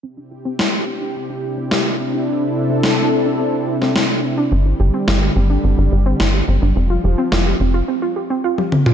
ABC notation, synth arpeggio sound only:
X:1
M:4/4
L:1/16
Q:1/4=107
K:C
V:1 name="Synth arpeggio sound"
C D E C D E C D C D E C D E C D | C D E C D E C D C D E C D E C D | C D G C z G C D C D G C D G C D | C F G C F G C F C F G C F G C F |]